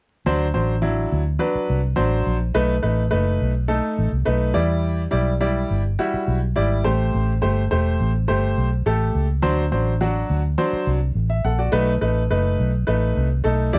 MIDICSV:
0, 0, Header, 1, 4, 480
1, 0, Start_track
1, 0, Tempo, 573614
1, 212, Time_signature, 4, 2, 24, 8
1, 11537, End_track
2, 0, Start_track
2, 0, Title_t, "Grand piano"
2, 0, Program_c, 0, 0
2, 218, Note_on_c, 0, 54, 101
2, 221, Note_on_c, 0, 62, 95
2, 222, Note_on_c, 0, 72, 114
2, 378, Note_off_c, 0, 54, 0
2, 379, Note_off_c, 0, 62, 0
2, 379, Note_off_c, 0, 72, 0
2, 449, Note_on_c, 0, 54, 68
2, 452, Note_on_c, 0, 62, 62
2, 452, Note_on_c, 0, 72, 79
2, 613, Note_off_c, 0, 54, 0
2, 615, Note_off_c, 0, 62, 0
2, 615, Note_off_c, 0, 72, 0
2, 683, Note_on_c, 0, 54, 73
2, 685, Note_on_c, 0, 62, 68
2, 685, Note_on_c, 0, 64, 76
2, 1013, Note_off_c, 0, 54, 0
2, 1014, Note_off_c, 0, 62, 0
2, 1014, Note_off_c, 0, 64, 0
2, 1163, Note_on_c, 0, 54, 76
2, 1165, Note_on_c, 0, 62, 74
2, 1168, Note_on_c, 0, 71, 88
2, 1493, Note_off_c, 0, 54, 0
2, 1494, Note_off_c, 0, 62, 0
2, 1496, Note_off_c, 0, 71, 0
2, 1639, Note_on_c, 0, 54, 78
2, 1640, Note_on_c, 0, 62, 71
2, 1640, Note_on_c, 0, 72, 84
2, 1971, Note_off_c, 0, 54, 0
2, 1972, Note_off_c, 0, 62, 0
2, 1972, Note_off_c, 0, 72, 0
2, 2128, Note_on_c, 0, 63, 89
2, 2130, Note_on_c, 0, 57, 102
2, 2132, Note_on_c, 0, 71, 107
2, 2293, Note_off_c, 0, 63, 0
2, 2294, Note_off_c, 0, 57, 0
2, 2295, Note_off_c, 0, 71, 0
2, 2364, Note_on_c, 0, 57, 71
2, 2365, Note_on_c, 0, 63, 65
2, 2366, Note_on_c, 0, 71, 75
2, 2531, Note_off_c, 0, 57, 0
2, 2532, Note_off_c, 0, 63, 0
2, 2532, Note_off_c, 0, 71, 0
2, 2600, Note_on_c, 0, 57, 77
2, 2601, Note_on_c, 0, 63, 66
2, 2601, Note_on_c, 0, 71, 85
2, 2932, Note_off_c, 0, 57, 0
2, 2933, Note_off_c, 0, 63, 0
2, 2933, Note_off_c, 0, 71, 0
2, 3081, Note_on_c, 0, 57, 79
2, 3081, Note_on_c, 0, 63, 70
2, 3081, Note_on_c, 0, 69, 88
2, 3413, Note_off_c, 0, 57, 0
2, 3413, Note_off_c, 0, 63, 0
2, 3413, Note_off_c, 0, 69, 0
2, 3559, Note_on_c, 0, 57, 78
2, 3562, Note_on_c, 0, 63, 72
2, 3562, Note_on_c, 0, 71, 80
2, 3797, Note_on_c, 0, 55, 78
2, 3799, Note_on_c, 0, 64, 75
2, 3799, Note_on_c, 0, 74, 89
2, 3806, Note_off_c, 0, 57, 0
2, 3808, Note_off_c, 0, 63, 0
2, 3808, Note_off_c, 0, 71, 0
2, 4190, Note_off_c, 0, 55, 0
2, 4190, Note_off_c, 0, 64, 0
2, 4190, Note_off_c, 0, 74, 0
2, 4275, Note_on_c, 0, 55, 70
2, 4277, Note_on_c, 0, 64, 64
2, 4280, Note_on_c, 0, 74, 81
2, 4447, Note_off_c, 0, 55, 0
2, 4448, Note_off_c, 0, 64, 0
2, 4450, Note_off_c, 0, 74, 0
2, 4523, Note_on_c, 0, 55, 76
2, 4523, Note_on_c, 0, 64, 67
2, 4526, Note_on_c, 0, 74, 83
2, 4855, Note_off_c, 0, 55, 0
2, 4855, Note_off_c, 0, 64, 0
2, 4856, Note_off_c, 0, 74, 0
2, 5010, Note_on_c, 0, 64, 74
2, 5011, Note_on_c, 0, 55, 78
2, 5012, Note_on_c, 0, 66, 83
2, 5339, Note_off_c, 0, 55, 0
2, 5339, Note_off_c, 0, 64, 0
2, 5339, Note_off_c, 0, 66, 0
2, 5486, Note_on_c, 0, 64, 70
2, 5488, Note_on_c, 0, 55, 75
2, 5491, Note_on_c, 0, 74, 87
2, 5725, Note_on_c, 0, 57, 74
2, 5728, Note_on_c, 0, 67, 72
2, 5728, Note_on_c, 0, 72, 82
2, 5731, Note_off_c, 0, 64, 0
2, 5732, Note_off_c, 0, 55, 0
2, 5733, Note_off_c, 0, 74, 0
2, 6115, Note_off_c, 0, 57, 0
2, 6116, Note_off_c, 0, 67, 0
2, 6116, Note_off_c, 0, 72, 0
2, 6206, Note_on_c, 0, 57, 72
2, 6208, Note_on_c, 0, 67, 62
2, 6209, Note_on_c, 0, 72, 81
2, 6374, Note_off_c, 0, 57, 0
2, 6375, Note_off_c, 0, 67, 0
2, 6375, Note_off_c, 0, 72, 0
2, 6451, Note_on_c, 0, 57, 79
2, 6451, Note_on_c, 0, 72, 84
2, 6453, Note_on_c, 0, 67, 67
2, 6780, Note_off_c, 0, 57, 0
2, 6780, Note_off_c, 0, 72, 0
2, 6781, Note_off_c, 0, 67, 0
2, 6929, Note_on_c, 0, 57, 77
2, 6929, Note_on_c, 0, 67, 68
2, 6931, Note_on_c, 0, 72, 87
2, 7259, Note_off_c, 0, 57, 0
2, 7259, Note_off_c, 0, 67, 0
2, 7260, Note_off_c, 0, 72, 0
2, 7413, Note_on_c, 0, 67, 68
2, 7415, Note_on_c, 0, 57, 74
2, 7419, Note_on_c, 0, 69, 83
2, 7741, Note_off_c, 0, 67, 0
2, 7742, Note_off_c, 0, 57, 0
2, 7744, Note_off_c, 0, 69, 0
2, 7885, Note_on_c, 0, 54, 98
2, 7885, Note_on_c, 0, 62, 87
2, 7888, Note_on_c, 0, 72, 108
2, 8054, Note_off_c, 0, 54, 0
2, 8054, Note_off_c, 0, 62, 0
2, 8056, Note_off_c, 0, 72, 0
2, 8130, Note_on_c, 0, 54, 64
2, 8133, Note_on_c, 0, 72, 72
2, 8134, Note_on_c, 0, 62, 61
2, 8297, Note_off_c, 0, 54, 0
2, 8298, Note_off_c, 0, 72, 0
2, 8299, Note_off_c, 0, 62, 0
2, 8373, Note_on_c, 0, 62, 66
2, 8375, Note_on_c, 0, 66, 81
2, 8376, Note_on_c, 0, 54, 79
2, 8701, Note_off_c, 0, 62, 0
2, 8702, Note_off_c, 0, 66, 0
2, 8703, Note_off_c, 0, 54, 0
2, 8853, Note_on_c, 0, 54, 81
2, 8853, Note_on_c, 0, 72, 86
2, 8856, Note_on_c, 0, 62, 74
2, 9096, Note_off_c, 0, 72, 0
2, 9181, Note_off_c, 0, 54, 0
2, 9182, Note_off_c, 0, 62, 0
2, 9453, Note_on_c, 0, 76, 65
2, 9569, Note_off_c, 0, 76, 0
2, 9577, Note_on_c, 0, 78, 62
2, 9583, Note_on_c, 0, 69, 54
2, 9691, Note_off_c, 0, 78, 0
2, 9695, Note_off_c, 0, 69, 0
2, 9695, Note_on_c, 0, 74, 58
2, 9697, Note_on_c, 0, 66, 53
2, 9807, Note_on_c, 0, 57, 98
2, 9812, Note_on_c, 0, 71, 113
2, 9813, Note_on_c, 0, 63, 92
2, 9924, Note_off_c, 0, 74, 0
2, 9925, Note_off_c, 0, 66, 0
2, 9975, Note_off_c, 0, 57, 0
2, 9978, Note_off_c, 0, 63, 0
2, 9978, Note_off_c, 0, 71, 0
2, 10052, Note_on_c, 0, 57, 68
2, 10052, Note_on_c, 0, 63, 64
2, 10053, Note_on_c, 0, 71, 78
2, 10217, Note_off_c, 0, 63, 0
2, 10218, Note_off_c, 0, 57, 0
2, 10218, Note_off_c, 0, 71, 0
2, 10297, Note_on_c, 0, 57, 71
2, 10298, Note_on_c, 0, 63, 70
2, 10298, Note_on_c, 0, 71, 83
2, 10623, Note_off_c, 0, 57, 0
2, 10623, Note_off_c, 0, 63, 0
2, 10624, Note_off_c, 0, 71, 0
2, 10768, Note_on_c, 0, 71, 83
2, 10770, Note_on_c, 0, 63, 72
2, 10771, Note_on_c, 0, 57, 78
2, 11098, Note_off_c, 0, 71, 0
2, 11099, Note_off_c, 0, 63, 0
2, 11100, Note_off_c, 0, 57, 0
2, 11245, Note_on_c, 0, 57, 78
2, 11247, Note_on_c, 0, 63, 71
2, 11249, Note_on_c, 0, 69, 84
2, 11488, Note_on_c, 0, 64, 69
2, 11490, Note_on_c, 0, 55, 80
2, 11491, Note_off_c, 0, 57, 0
2, 11491, Note_on_c, 0, 74, 92
2, 11492, Note_off_c, 0, 63, 0
2, 11493, Note_off_c, 0, 69, 0
2, 11537, Note_off_c, 0, 55, 0
2, 11537, Note_off_c, 0, 64, 0
2, 11537, Note_off_c, 0, 74, 0
2, 11537, End_track
3, 0, Start_track
3, 0, Title_t, "Fingered electric bass"
3, 0, Program_c, 1, 33
3, 221, Note_on_c, 1, 38, 100
3, 428, Note_off_c, 1, 38, 0
3, 462, Note_on_c, 1, 33, 73
3, 880, Note_off_c, 1, 33, 0
3, 939, Note_on_c, 1, 38, 81
3, 1147, Note_off_c, 1, 38, 0
3, 1421, Note_on_c, 1, 36, 71
3, 1628, Note_off_c, 1, 36, 0
3, 1659, Note_on_c, 1, 33, 90
3, 1867, Note_off_c, 1, 33, 0
3, 1895, Note_on_c, 1, 34, 82
3, 2105, Note_off_c, 1, 34, 0
3, 2134, Note_on_c, 1, 35, 93
3, 2344, Note_off_c, 1, 35, 0
3, 2375, Note_on_c, 1, 33, 79
3, 2585, Note_off_c, 1, 33, 0
3, 2615, Note_on_c, 1, 30, 77
3, 2825, Note_off_c, 1, 30, 0
3, 2858, Note_on_c, 1, 35, 80
3, 3173, Note_off_c, 1, 35, 0
3, 3335, Note_on_c, 1, 33, 78
3, 3439, Note_off_c, 1, 33, 0
3, 3450, Note_on_c, 1, 36, 71
3, 3557, Note_off_c, 1, 36, 0
3, 3574, Note_on_c, 1, 35, 87
3, 3785, Note_off_c, 1, 35, 0
3, 3813, Note_on_c, 1, 40, 84
3, 4236, Note_off_c, 1, 40, 0
3, 4294, Note_on_c, 1, 35, 83
3, 4717, Note_off_c, 1, 35, 0
3, 4774, Note_on_c, 1, 31, 83
3, 4986, Note_off_c, 1, 31, 0
3, 5253, Note_on_c, 1, 35, 79
3, 5465, Note_off_c, 1, 35, 0
3, 5500, Note_on_c, 1, 32, 83
3, 5709, Note_off_c, 1, 32, 0
3, 5740, Note_on_c, 1, 33, 91
3, 5949, Note_off_c, 1, 33, 0
3, 5978, Note_on_c, 1, 33, 98
3, 6189, Note_off_c, 1, 33, 0
3, 6218, Note_on_c, 1, 31, 83
3, 6428, Note_off_c, 1, 31, 0
3, 6462, Note_on_c, 1, 28, 82
3, 6671, Note_off_c, 1, 28, 0
3, 6697, Note_on_c, 1, 33, 90
3, 6908, Note_off_c, 1, 33, 0
3, 6938, Note_on_c, 1, 31, 76
3, 7149, Note_off_c, 1, 31, 0
3, 7177, Note_on_c, 1, 35, 81
3, 7389, Note_off_c, 1, 35, 0
3, 7415, Note_on_c, 1, 33, 82
3, 7627, Note_off_c, 1, 33, 0
3, 7655, Note_on_c, 1, 37, 80
3, 7867, Note_off_c, 1, 37, 0
3, 7898, Note_on_c, 1, 38, 93
3, 8109, Note_off_c, 1, 38, 0
3, 8137, Note_on_c, 1, 33, 79
3, 8559, Note_off_c, 1, 33, 0
3, 8618, Note_on_c, 1, 38, 77
3, 8829, Note_off_c, 1, 38, 0
3, 9096, Note_on_c, 1, 36, 78
3, 9308, Note_off_c, 1, 36, 0
3, 9332, Note_on_c, 1, 33, 78
3, 9545, Note_off_c, 1, 33, 0
3, 9577, Note_on_c, 1, 34, 90
3, 9788, Note_off_c, 1, 34, 0
3, 9817, Note_on_c, 1, 35, 99
3, 10028, Note_off_c, 1, 35, 0
3, 10055, Note_on_c, 1, 33, 84
3, 10267, Note_off_c, 1, 33, 0
3, 10296, Note_on_c, 1, 30, 88
3, 10508, Note_off_c, 1, 30, 0
3, 10540, Note_on_c, 1, 35, 84
3, 10750, Note_off_c, 1, 35, 0
3, 10779, Note_on_c, 1, 33, 82
3, 10989, Note_off_c, 1, 33, 0
3, 11020, Note_on_c, 1, 36, 81
3, 11230, Note_off_c, 1, 36, 0
3, 11255, Note_on_c, 1, 35, 87
3, 11467, Note_off_c, 1, 35, 0
3, 11501, Note_on_c, 1, 40, 91
3, 11537, Note_off_c, 1, 40, 0
3, 11537, End_track
4, 0, Start_track
4, 0, Title_t, "Muted fingered electric bass strokes"
4, 1299, Note_on_c, 9, 29, 45
4, 1382, Note_off_c, 9, 29, 0
4, 5136, Note_on_c, 9, 29, 47
4, 5219, Note_off_c, 9, 29, 0
4, 8978, Note_on_c, 9, 29, 47
4, 9061, Note_off_c, 9, 29, 0
4, 11537, End_track
0, 0, End_of_file